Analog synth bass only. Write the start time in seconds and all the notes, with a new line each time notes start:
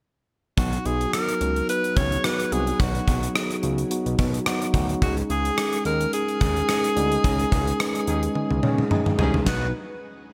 0.58 B1
0.85 B1
1.41 C#2
1.97 C#2
2.52 C2
2.80 B1
3.08 B1
3.63 C#2
4.06 B1
4.19 B2
4.74 D2
5.02 C#2
5.30 C#2
5.85 D#2
6.41 D#2
6.97 D2
7.24 C#2
7.52 C#2
8.07 D#2
8.51 C#2
8.63 C#3
9.19 C2
9.47 B1